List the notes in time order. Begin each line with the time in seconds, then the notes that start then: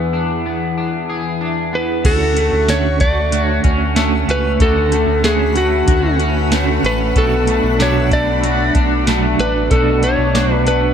Already playing: E2 E3 B3 D4 E4 G#4
0.13 D4
0.46 B3
0.77 D4
1.09 G#4
1.41 D4
1.73 B3 B4
2.04 D2 D3 A3 C#4 A4 F#5 C#6, kick, closed hi-hat, crash
2.08 F#4
2.36 A3 C#4 F#4, closed hi-hat
2.42 A3
2.53 D2
2.68 D3 A3 C#4 C#5, snare, closed hi-hat, tambourine
2.72 F#4
2.99 A3 F#4 D5, kick, closed hi-hat
3.05 A3
3.31 D3 A3, closed hi-hat
3.36 F#4
3.43 C#5
3.63 D2 C#4 F#4, kick, closed hi-hat
3.68 A3
3.95 D3 A3 C#4 F#4 B4, snare, closed hi-hat, tambourine
4.26 C#2 C#4 F#4, closed hi-hat
4.31 A3 B4
4.59 D2 D3 A3 C#4 A4, kick, closed hi-hat
4.63 F#4
4.90 A3 C#4 F#4, closed hi-hat
4.96 A3
5.07 D2
5.23 D3 A3 C#4 F#4 G#4 C#5, snare, closed hi-hat, tambourine
5.54 C#4 F#4, closed hi-hat
5.60 A3
5.85 D2 D3 A3 B4, kick, closed hi-hat
5.90 C#4 F#4
6.10 E5
6.18 C#4 F#4, closed hi-hat
6.24 A3
6.50 D3 A3 C#4, snare, closed hi-hat, tambourine
6.54 F#4
6.82 A1 C#4 F#4 B4, closed hi-hat
7.15 B1 B2 F#3 A3 D4 F#4 A4 B5, kick, closed hi-hat
7.46 D4 F#4, closed hi-hat
7.52 A3
7.64 B1
7.78 B2 F#3 A3 D4 C#5, snare, closed hi-hat, tambourine
7.83 F#4
8.10 A3 D4 F#4 D5, kick, closed hi-hat
8.43 F#3 A3 D4 F#4, closed hi-hat
8.48 F#4
8.74 B1 D4 F#4, kick, closed hi-hat
8.79 A3
9.06 B2 F#3 A3 D4 F#4, snare, closed hi-hat, tambourine
9.39 A1 D4 F#4 B4, closed hi-hat
9.44 A3
9.70 B1 B2 F#3 A3 A4 C#6, kick, closed hi-hat
9.74 D4 F#4
10.02 A3 D4 F#4 C#5, closed hi-hat
10.07 A3
10.18 B1
10.34 B2 F#3 A3 D4 F#4, snare, closed hi-hat, tambourine
10.54 B4
10.66 A3 D4 F#4 B4, closed hi-hat
10.71 A3